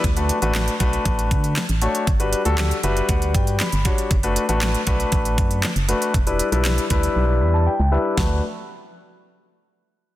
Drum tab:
HH |xxxxxxxxxxxxxxxx|xxxxxxxxxxxxxxxx|xxxxxxxxxxxxxxxx|xxxxxxxx--------|
CP |----x-------x---|----x-------x---|----x-------x---|----x-----------|
SD |----o-------o---|----o-------o---|----o-------o---|----o-----------|
BD |o-----o-o-o-----|o-------o-o---o-|o-----o-o-o-----|o-----o---------|

HH |----------------|
CP |----------------|
SD |o---------------|
BD |o---------------|